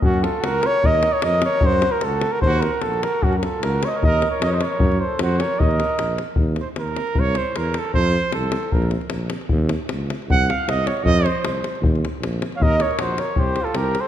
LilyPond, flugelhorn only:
\new Staff \with { instrumentName = "Flugelhorn" } { \time 2/4 \tempo 4 = 153 ges'8 a'8 bes'8 des''8 | \tuplet 3/2 { ees''4 des''8 } ees''8 des''8 | \tuplet 3/2 { c''4 bes'8 a'4 bes'8 } | c''8 bes'8 a'8 bes'8 |
ges'16. bes'32 a'8 bes'8 des''32 ees''32 des''16 | \tuplet 3/2 { ees''4 des''8 } ees''32 des''32 ees''16 des''8~ | des''8 c''8 c''8 des''8 | ees''4. r8 |
r2 | r2 | r2 | r2 |
r2 | r2 | r2 | r4. r16. f''32 |
ees''8 des''8 c''8 des''8 | \tuplet 3/2 { c''4 a'8 bes'4 c''8 } | }